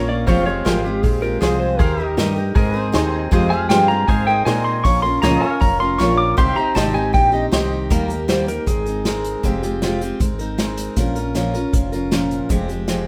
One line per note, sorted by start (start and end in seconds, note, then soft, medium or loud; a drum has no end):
0.00 0.26 A#1 medium
0.00 0.27 A#2 medium
0.00 0.27 A#3 medium
0.00 0.28 C#4 medium
0.00 0.12 F4 medium
0.00 0.28 F4 medium
0.00 0.12 A#4 medium
0.00 0.26 A#4 medium
0.00 0.28 A#4 medium
0.00 0.13 C#5 medium
0.00 0.26 C#5 medium
0.00 0.27 F5 medium
0.09 0.27 D5 loud
0.27 0.65 F1 medium
0.27 0.46 F2 medium
0.27 0.46 F3 loud
0.27 0.47 G#3 medium
0.27 0.52 A#3 medium
0.27 0.47 C4 loud
0.27 0.45 F4 loud
0.27 0.46 G4 medium
0.27 0.46 C5 medium
0.27 0.49 C#5 medium
0.27 1.80 F5 medium
0.27 kick loud
0.27 open hi-hat medium
0.46 0.65 G#3 soft
0.46 0.65 C4 soft
0.46 0.65 F4 medium
0.46 0.66 G4 medium
0.46 1.79 C5 medium
0.46 0.65 C#5 medium
0.52 1.78 G#3 medium
0.64 1.03 G#1 medium
0.64 0.84 F2 medium
0.64 0.85 F3 medium
0.64 0.85 G#3 medium
0.64 0.85 C4 medium
0.64 0.88 F4 medium
0.64 0.83 F4 medium
0.64 0.84 G4 medium
0.64 0.88 G#4 medium
0.64 0.84 A#4 medium
0.64 0.89 C5 medium
0.64 snare loud
0.64 open hi-hat medium
0.84 1.02 G#3 soft
0.84 1.03 C4 medium
0.84 1.03 F4 medium
0.84 1.04 G4 medium
1.03 1.41 A#1 medium
1.03 1.22 G#3 medium
1.03 1.23 C4 medium
1.03 1.21 F4 medium
1.03 1.22 G4 medium
1.03 1.22 G#4 medium
1.03 kick loud
1.03 open hi-hat medium
1.22 1.41 G#3 soft
1.22 1.41 C4 medium
1.22 1.42 F4 medium
1.22 1.41 G4 medium
1.22 1.40 A#4 loud
1.41 1.79 C2 loud
1.41 1.79 F2 medium
1.41 1.80 F3 medium
1.41 1.79 G#3 medium
1.41 1.80 C4 medium
1.41 1.65 F4 medium
1.41 1.81 F4 medium
1.41 1.79 G4 medium
1.41 1.60 G#4 medium
1.41 1.65 G#4 medium
1.41 1.65 C5 medium
1.41 snare loud
1.41 open hi-hat medium
1.60 1.79 C5 loud
1.79 2.17 D#2 medium
1.79 1.99 D#3 medium
1.79 1.99 D#4 medium
1.79 1.99 G4 loud
1.79 1.99 G#4 medium
1.79 2.37 A#4 medium
1.79 1.97 A#4 medium
1.79 2.05 C5 medium
1.79 2.06 F5 medium
1.79 kick loud
1.79 open hi-hat medium
1.98 2.17 D#4 soft
1.98 2.55 G4 medium
1.98 2.18 G4 medium
1.98 2.18 A#4 medium
2.05 2.55 A#4 medium
2.05 2.56 D#5 medium
2.17 2.55 G2 medium
2.17 2.37 D#3 medium
2.17 2.41 D#4 medium
2.17 2.37 D#4 medium
2.17 2.41 G4 medium
2.17 2.37 G4 loud
2.17 2.42 A#4 medium
2.17 2.35 A#4 medium
2.17 snare loud
2.17 open hi-hat medium
2.36 2.55 D#4 soft
2.36 2.57 G4 medium
2.36 2.56 A#4 medium
2.55 2.93 G#2 medium
2.55 2.75 G#3 medium
2.55 2.74 C4 medium
2.55 2.75 D#4 medium
2.55 3.31 G#4 medium
2.55 2.81 A#4 medium
2.55 2.72 A#4 medium
2.55 3.32 D#5 medium
2.55 kick loud
2.55 open hi-hat medium
2.74 2.93 C4 medium
2.74 2.92 D#4 medium
2.74 2.94 A#4 medium
2.81 3.32 C5 medium
2.92 3.31 D#2 loud
2.92 3.31 G#3 medium
2.92 3.32 C4 loud
2.92 3.32 D#4 loud
2.92 3.17 D#4 medium
2.92 3.17 G#4 medium
2.92 3.33 A#4 medium
2.92 3.18 C5 loud
2.92 snare loud
2.92 open hi-hat soft
3.31 3.51 F2 medium
3.31 3.69 F2 medium
3.31 3.51 F3 medium
3.31 3.52 G#3 loud
3.31 3.51 C4 loud
3.31 3.49 F4 loud
3.31 3.50 G4 loud
3.31 4.08 G#4 medium
3.31 4.08 C5 medium
3.31 3.60 D#5 medium
3.31 kick loud
3.31 open hi-hat soft
3.50 3.70 G#3 soft
3.50 3.70 C4 medium
3.50 3.70 F4 medium
3.50 3.71 G4 medium
3.50 3.69 G#5 medium
3.60 4.09 F5 medium
3.69 3.90 F2 medium
3.69 4.08 G2 loud
3.69 3.90 F3 medium
3.69 3.90 G#3 medium
3.69 3.90 C4 medium
3.69 3.93 F4 medium
3.69 3.87 F4 medium
3.69 3.89 G4 medium
3.69 3.93 G#4 medium
3.69 3.94 C5 medium
3.69 3.88 G5 medium
3.69 snare loud
3.69 open hi-hat medium
3.88 4.07 G#3 soft
3.88 4.08 C4 soft
3.88 4.08 F4 medium
3.88 4.09 G4 soft
3.88 4.08 A#5 loud
4.08 4.46 G#2 medium
4.08 4.27 G#3 medium
4.08 4.28 C4 medium
4.08 4.28 D#4 medium
4.08 4.84 G#4 medium
4.08 4.26 A#4 medium
4.08 4.85 C5 medium
4.08 4.36 F5 medium
4.08 4.26 G#5 medium
4.08 kick loud
4.08 open hi-hat medium
4.27 4.46 C4 medium
4.27 4.46 D#4 medium
4.27 4.47 A#4 medium
4.27 4.45 G5 loud
4.36 4.85 D#5 medium
4.45 4.84 A#2 loud
4.45 4.85 G#3 medium
4.45 4.85 C4 loud
4.45 4.69 D#4 medium
4.45 4.85 D#4 medium
4.45 4.70 G#4 medium
4.45 4.86 A#4 medium
4.45 4.70 C5 medium
4.45 4.65 G#5 medium
4.45 snare loud
4.45 open hi-hat medium
4.64 4.84 C6 loud
4.84 5.22 A#1 medium
4.84 5.04 A#2 medium
4.84 5.04 F3 loud
4.84 5.04 C#4 medium
4.84 5.04 F4 medium
4.84 5.02 A#4 loud
4.84 5.02 C#6 loud
4.84 kick loud
4.84 open hi-hat medium
5.02 5.23 F4 medium
5.02 5.23 A#4 medium
5.02 5.21 C6 loud
5.06 5.22 C#4 medium
5.22 5.41 C#2 medium
5.22 5.42 A#2 medium
5.22 5.42 F3 loud
5.22 5.43 C#4 loud
5.22 5.46 F4 medium
5.22 5.42 F4 loud
5.22 5.49 G#4 medium
5.22 5.46 A#4 medium
5.22 5.40 A#4 medium
5.22 5.45 C5 medium
5.22 5.47 C#5 medium
5.22 5.51 D#5 medium
5.22 5.41 A#5 loud
5.22 snare loud
5.22 open hi-hat medium
5.41 5.60 C#4 soft
5.41 5.61 F4 medium
5.41 5.61 A#4 medium
5.41 6.37 C#5 medium
5.41 5.60 G#5 loud
5.49 6.37 A#4 medium
5.49 6.38 F5 medium
5.60 5.99 F1 medium
5.60 5.80 F3 medium
5.60 5.80 C#4 medium
5.60 5.80 F4 medium
5.60 5.78 A#4 medium
5.60 5.80 A#5 loud
5.60 kick loud
5.60 open hi-hat medium
5.79 5.98 C#4 soft
5.79 5.99 F4 soft
5.79 5.99 A#4 medium
5.79 5.99 C6 loud
5.99 6.37 A#1 loud
5.99 6.36 A#2 medium
5.99 6.37 F3 medium
5.99 6.38 C#4 medium
5.99 6.22 F4 medium
5.99 6.38 F4 medium
5.99 6.23 A#4 medium
5.99 6.38 A#4 medium
5.99 6.23 C#5 medium
5.99 6.18 C#6 medium
5.99 snare loud
5.99 open hi-hat medium
6.18 6.37 D6 loud
6.37 6.56 C2 medium
6.37 6.56 C3 medium
6.37 6.57 D#3 medium
6.37 6.57 C4 loud
6.37 6.56 D#4 loud
6.37 7.89 G4 medium
6.37 6.54 G4 medium
6.37 7.90 C5 medium
6.37 6.65 F5 medium
6.37 6.56 C6 loud
6.37 kick loud
6.37 open hi-hat medium
6.56 6.75 C4 medium
6.56 6.76 D#4 medium
6.56 6.75 G4 medium
6.56 6.75 A#5 loud
6.56 muted fretless electric bass stroke soft
6.65 7.90 D#5 medium
6.75 7.13 G#1 loud
6.75 6.95 C3 loud
6.75 6.95 D#3 loud
6.75 6.95 C4 medium
6.75 6.94 D#4 loud
6.75 6.99 G4 medium
6.75 6.92 G4 loud
6.75 6.99 C5 medium
6.75 7.00 D#5 medium
6.75 6.94 A5 medium
6.75 snare loud
6.75 open hi-hat medium
6.94 7.13 C4 soft
6.94 7.14 D#4 medium
6.94 7.14 G4 medium
6.94 7.13 G#5 loud
7.13 7.51 A#1 medium
7.13 7.33 D#3 medium
7.13 7.33 C4 medium
7.13 7.32 D#4 medium
7.13 7.31 G4 medium
7.13 7.33 G5 loud
7.13 kick loud
7.13 open hi-hat medium
7.32 7.52 C4 medium
7.32 7.52 D#4 medium
7.32 7.52 G4 medium
7.32 7.45 D#5 loud
7.52 7.90 C2 medium
7.52 7.90 C3 medium
7.52 7.89 D#3 medium
7.52 7.91 C4 loud
7.52 7.91 D#4 loud
7.52 7.75 G4 medium
7.52 7.92 G4 loud
7.52 7.76 C5 medium
7.52 7.76 D#5 medium
7.52 snare loud
7.52 open hi-hat medium
7.90 8.58 D#2 medium
7.90 8.10 D#3 medium
7.90 8.10 G3 loud
7.90 8.10 A#3 loud
7.90 8.09 D#4 loud
7.90 8.07 G4 loud
7.90 8.28 A#4 medium
7.90 kick loud
7.90 closed hi-hat medium
8.08 8.28 A#3 soft
8.08 8.29 D#4 medium
8.08 8.28 G4 medium
8.08 closed hi-hat medium
8.28 8.48 D#3 loud
8.28 8.48 G3 loud
8.28 8.48 A#3 medium
8.28 8.47 D#4 medium
8.28 8.45 G4 medium
8.28 8.48 C5 medium
8.28 snare loud
8.28 closed hi-hat medium
8.47 8.67 A#3 soft
8.47 8.67 D#4 medium
8.47 8.66 G4 medium
8.47 8.67 A#4 medium
8.47 closed hi-hat medium
8.66 9.35 G#1 medium
8.66 8.86 G#3 medium
8.66 8.87 C4 medium
8.66 8.86 D#4 medium
8.66 9.79 G#4 medium
8.66 8.84 A#4 medium
8.66 kick loud
8.66 closed hi-hat medium
8.86 9.05 C4 soft
8.86 9.05 D#4 medium
8.86 9.05 A#4 medium
8.86 closed hi-hat medium
9.05 9.44 G#3 medium
9.05 9.44 C4 medium
9.05 9.44 D#4 medium
9.05 9.45 A#4 loud
9.05 snare loud
9.05 closed hi-hat medium
9.24 closed hi-hat medium
9.43 10.11 F1 medium
9.43 9.63 F2 medium
9.43 9.63 C3 medium
9.43 9.63 G#3 medium
9.43 9.63 C4 medium
9.43 9.62 F4 loud
9.43 9.61 G4 loud
9.43 kick loud
9.43 closed hi-hat medium
9.62 9.82 G#3 medium
9.62 9.82 C4 medium
9.62 9.82 F4 medium
9.62 9.82 G4 medium
9.62 closed hi-hat medium
9.82 10.01 F2 medium
9.82 10.01 C3 medium
9.82 10.02 G#3 medium
9.82 10.02 C4 loud
9.82 10.01 F4 loud
9.82 10.00 G4 loud
9.82 snare loud
9.82 closed hi-hat medium
10.01 10.19 G#3 medium
10.01 10.20 C4 medium
10.01 10.21 F4 medium
10.01 10.20 G4 medium
10.01 closed hi-hat medium
10.20 10.88 G#1 medium
10.20 10.39 G#3 medium
10.20 10.40 C4 medium
10.20 10.40 D#4 medium
10.20 10.38 A#4 medium
10.20 kick loud
10.20 closed hi-hat medium
10.39 10.58 C4 medium
10.39 10.58 D#4 medium
10.39 10.58 A#4 medium
10.39 closed hi-hat medium
10.58 10.96 G#3 medium
10.58 10.97 C4 medium
10.58 10.97 D#4 medium
10.58 10.98 A#4 loud
10.58 snare loud
10.58 closed hi-hat medium
10.78 closed hi-hat medium
10.96 11.64 A#1 medium
10.96 11.16 A#2 medium
10.96 11.16 F3 loud
10.96 11.17 C#4 medium
10.96 11.16 F4 loud
10.96 11.14 A#4 loud
10.96 kick loud
10.96 closed hi-hat medium
11.15 11.35 C#4 medium
11.15 11.35 F4 medium
11.15 11.35 A#4 medium
11.15 closed hi-hat medium
11.35 11.54 A#2 medium
11.35 11.54 F3 medium
11.35 11.55 C#4 medium
11.35 11.54 F4 loud
11.35 11.53 A#4 loud
11.35 snare loud
11.35 closed hi-hat medium
11.54 11.73 C#4 medium
11.54 11.74 F4 medium
11.54 11.73 A#4 medium
11.54 closed hi-hat medium
11.73 12.41 F1 medium
11.73 11.92 F3 medium
11.73 11.93 C#4 medium
11.73 11.93 F4 medium
11.73 11.91 A#4 medium
11.73 kick loud
11.73 closed hi-hat medium
11.92 12.11 C#4 medium
11.92 12.12 F4 medium
11.92 12.11 A#4 medium
11.92 closed hi-hat medium
12.11 12.49 A#2 medium
12.11 12.49 F3 medium
12.11 12.50 C#4 medium
12.11 12.51 F4 medium
12.11 12.51 A#4 medium
12.11 snare loud
12.11 closed hi-hat medium
12.31 closed hi-hat medium
12.49 13.07 F1 medium
12.49 12.69 F2 medium
12.49 12.69 C3 medium
12.49 12.69 F3 loud
12.49 12.69 G#3 loud
12.49 12.68 C4 loud
12.49 12.67 G4 medium
12.49 kick loud
12.49 closed hi-hat medium
12.69 12.88 F3 medium
12.69 12.88 G#3 medium
12.69 12.88 C4 medium
12.69 12.88 G4 medium
12.69 closed hi-hat medium
12.88 13.07 F2 medium
12.88 13.07 C3 medium
12.88 13.07 F3 loud
12.88 13.07 G#3 loud
12.88 13.06 C4 loud
12.88 13.05 G4 medium
12.88 snare loud
12.88 closed hi-hat medium